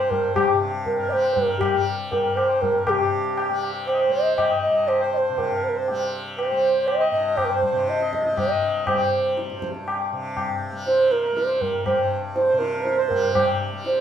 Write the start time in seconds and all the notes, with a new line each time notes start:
Already playing: G2 C3 G3 C5
0.10 A#4, tabla tin, tabla ge
0.35 G4, tabla na, tabla ge
0.48 G4
0.53 C3
0.86 A#4, tabla tin, tabla ge
0.99 A#4
1.09 G3 C5 D#5, tabla na
1.23 C5
1.34 A#4, tabla tin, tabla ge
1.49 A#4
1.58 G4, tabla na, tabla ge
1.74 G3
2.11 A#4, tabla tin, tabla ge
2.25 A#4
2.36 G2 C5, tabla na
2.50 C5
2.62 A#4, tabla tin, tabla ge
2.75 A#4
2.86 C3 G4 A#4, tabla na, tabla ge
3.00 G4
3.38 tabla na
3.50 G3
3.63 tabla na
3.86 C5, tabla na
3.93 D#5
4.00 C5
4.08 G3
4.12 D#5
4.37 D#5, tabla na, tabla ge
4.50 D#5
4.62 D#5
4.69 G2
4.76 D#5
4.88 C5, tabla na
5.01 C5
5.13 D#5
5.18 C5
5.30 C3
5.38 A#4, tabla tin, tabla ge
5.52 A#4
5.63 C5
5.69 A#4
5.75 C5
5.88 G3 C5, tabla tin
6.37 C5, tabla na
6.50 G3 C5
6.87 D#5, tabla na
7.00 D#5
7.11 G2 D#5
7.37 C5, tabla na, tabla ge
7.44 A#4
7.50 C5
7.63 C5, tabla ge
7.72 C3
7.88 D#5, tabla te
8.00 D#5, tabla te
8.13 D#5, tabla ke
8.25 D#5, tabla te
8.32 G3
8.37 D#5, tabla na, tabla ge
8.50 D#5
8.87 C5, tabla na, tabla ge
8.93 G3
9.00 C5
9.37 tabla te
9.50 G2, tabla te
9.62 tabla ke
9.75 tabla te
9.88 tabla na
10.12 C3
10.37 tabla na, tabla ge
10.72 G3
10.87 C5, tabla te
10.99 C5
11.11 A#4, tabla te
11.24 A#4
11.32 G3
11.37 C5, tabla te
11.49 C5
11.61 A#4, tabla tin, tabla ge
11.74 A#4
11.86 C5, tabla na, tabla ge
11.93 G2
11.98 C5
12.35 C5, tabla te
12.48 C5
12.52 C3
12.59 A#4, tabla te
12.73 A#4
12.83 C5, tabla te
12.98 C5
13.08 G3 A#4, tabla tin, tabla ge
13.34 C5, tabla na, tabla ge
13.47 C5
13.72 G3
13.85 C5, tabla te
13.96 C5